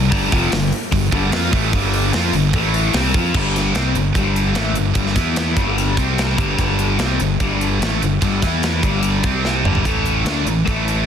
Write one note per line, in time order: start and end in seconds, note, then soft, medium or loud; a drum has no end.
0.00 0.11 C2 medium
0.10 0.31 G1 medium
0.10 0.31 G2 medium
0.10 0.31 D3 medium
0.10 0.31 G3 medium
0.10 kick loud
0.10 open hi-hat medium
0.31 0.51 F1 loud
0.31 0.51 F2 medium
0.31 0.52 C3 loud
0.31 0.52 F3 loud
0.31 kick loud
0.31 open hi-hat medium
0.51 0.71 G1 medium
0.51 0.68 G2 medium
0.51 0.69 D3 medium
0.51 snare loud
0.51 open hi-hat medium
0.72 open hi-hat medium
0.91 1.11 G1 medium
0.91 1.08 G2 medium
0.91 1.08 D3 medium
0.91 kick medium
0.91 open hi-hat medium
1.12 1.31 G1 loud
1.12 1.32 G2 medium
1.12 1.30 D3 loud
1.12 1.31 G3 loud
1.12 kick loud
1.12 open hi-hat medium
1.31 1.51 F2 medium
1.31 1.51 F3 loud
1.31 1.51 C4 loud
1.31 1.52 F4 loud
1.31 snare loud
1.31 open hi-hat medium
1.51 1.72 A1 medium
1.51 1.71 A2 medium
1.51 1.72 E3 loud
1.51 1.72 A3 medium
1.51 kick loud
1.51 open hi-hat medium
1.72 2.11 G1 medium
1.72 2.12 G2 loud
1.72 2.12 D3 loud
1.72 2.13 G3 loud
1.72 kick loud
1.72 open hi-hat medium
1.94 open hi-hat medium
2.13 2.32 F2 medium
2.13 2.33 F3 medium
2.13 2.33 C4 medium
2.13 2.33 F4 loud
2.13 snare loud
2.13 open hi-hat medium
2.33 2.52 G1 medium
2.33 2.50 G2 medium
2.33 2.50 D3 medium
2.33 open hi-hat medium
2.53 2.91 A1 loud
2.53 2.94 A2 medium
2.53 2.94 E3 loud
2.53 2.94 A3 medium
2.53 kick loud
2.53 open hi-hat medium
2.74 open hi-hat medium
2.94 3.12 C2 medium
2.94 3.14 C3 loud
2.94 3.14 G3 loud
2.94 3.15 C4 loud
2.94 snare loud
2.94 open hi-hat medium
3.14 3.33 F2 medium
3.14 3.35 F3 medium
3.14 3.35 C4 loud
3.14 3.35 F4 medium
3.14 kick loud
3.14 open hi-hat medium
3.34 3.72 G1 medium
3.34 3.75 G2 medium
3.34 3.75 D3 medium
3.34 3.75 G3 medium
3.34 kick medium
3.34 crash loud
3.56 snare soft
3.56 closed hi-hat medium
3.75 3.94 C2 medium
3.75 3.95 C3 medium
3.75 3.95 G3 medium
3.75 3.96 C4 medium
3.75 snare medium
3.75 closed hi-hat medium
3.94 4.13 G1 medium
3.94 4.11 G2 medium
3.94 4.12 D3 medium
3.94 closed hi-hat medium
4.15 4.53 G1 medium
4.15 4.56 G2 medium
4.15 4.56 D3 loud
4.15 4.56 G3 loud
4.15 kick medium
4.15 closed hi-hat medium
4.36 closed hi-hat medium
4.55 4.73 A1 medium
4.55 4.75 A2 medium
4.55 4.76 E3 medium
4.55 4.77 A3 loud
4.55 snare loud
4.55 closed hi-hat medium
4.73 4.93 G1 medium
4.73 4.92 G2 medium
4.73 4.92 D3 medium
4.73 closed hi-hat medium
4.95 5.15 G1 medium
4.95 5.15 G2 medium
4.95 5.15 D3 medium
4.95 5.16 G3 loud
4.95 kick loud
4.95 closed hi-hat medium
5.06 snare soft
5.15 5.54 E2 medium
5.15 5.56 E3 medium
5.15 5.56 B3 medium
5.15 5.56 E4 medium
5.15 kick medium
5.15 snare soft
5.15 closed hi-hat medium
5.36 snare loud
5.36 closed hi-hat medium
5.56 5.95 G1 medium
5.56 5.96 G2 medium
5.56 5.96 D3 medium
5.56 5.97 G3 loud
5.56 kick loud
5.56 closed hi-hat medium
5.78 closed hi-hat medium
5.97 6.35 C2 medium
5.97 6.37 C3 medium
5.97 6.38 G3 loud
5.97 6.38 C4 loud
5.97 kick medium
5.97 closed hi-hat medium
6.18 snare loud
6.18 closed hi-hat medium
6.38 6.57 G1 medium
6.38 6.57 G2 medium
6.38 6.58 D3 medium
6.38 6.58 G3 medium
6.38 kick loud
6.38 closed hi-hat medium
6.58 6.96 G1 medium
6.58 6.99 G2 medium
6.58 6.99 D3 medium
6.58 6.98 G3 medium
6.58 kick loud
6.58 closed hi-hat medium
6.79 closed hi-hat medium
6.99 7.18 C2 medium
6.99 7.19 C3 medium
6.99 7.19 G3 loud
6.99 7.19 C4 medium
6.99 snare loud
6.99 closed hi-hat medium
7.20 7.39 G1 medium
7.20 7.36 G2 medium
7.20 7.37 D3 medium
7.20 closed hi-hat medium
7.40 7.78 G1 medium
7.40 7.80 G2 medium
7.40 7.80 D3 medium
7.40 7.81 G3 loud
7.40 kick loud
7.40 closed hi-hat medium
7.61 closed hi-hat medium
7.80 7.99 A1 medium
7.80 8.01 A2 medium
7.80 8.01 E3 medium
7.80 8.01 A3 loud
7.80 snare loud
7.80 closed hi-hat medium
8.01 8.21 G1 medium
8.01 8.17 G2 medium
8.01 8.18 D3 medium
8.01 closed hi-hat medium
8.22 8.41 G1 medium
8.22 8.42 G2 medium
8.22 8.42 D3 medium
8.22 8.42 G3 loud
8.22 kick loud
8.22 closed hi-hat medium
8.42 8.80 E2 medium
8.42 8.82 E3 medium
8.42 8.83 B3 medium
8.42 8.83 E4 medium
8.42 kick medium
8.42 snare soft
8.42 closed hi-hat medium
8.63 snare loud
8.63 closed hi-hat medium
8.83 9.21 G1 medium
8.83 9.23 G2 medium
8.83 9.23 D3 medium
8.83 9.23 G3 medium
8.83 kick loud
8.83 closed hi-hat medium
9.03 closed hi-hat medium
9.24 9.62 C2 medium
9.24 9.64 C3 medium
9.24 9.64 G3 medium
9.24 9.64 C4 loud
9.24 kick medium
9.24 closed hi-hat medium
9.45 snare medium
9.64 9.83 G1 medium
9.64 9.85 G2 medium
9.64 9.84 D3 medium
9.64 9.85 G3 medium
9.64 mid tom medium
9.75 floor tom medium
9.84 10.24 A1 medium
9.84 10.25 A2 medium
9.84 10.25 E3 medium
9.84 10.24 A3 medium
9.84 kick medium
9.84 closed hi-hat medium
10.06 closed hi-hat medium
10.25 10.45 D2 medium
10.25 10.46 D3 medium
10.25 10.46 A3 medium
10.25 10.46 D4 medium
10.25 snare loud
10.25 closed hi-hat medium
10.46 10.65 A1 medium
10.46 10.63 A2 medium
10.46 10.63 E3 medium
10.46 closed hi-hat medium
10.65 11.05 A1 medium
10.65 11.06 A2 medium
10.65 11.06 E3 medium
10.65 11.06 A3 loud
10.65 kick medium
10.65 closed hi-hat medium
10.88 closed hi-hat medium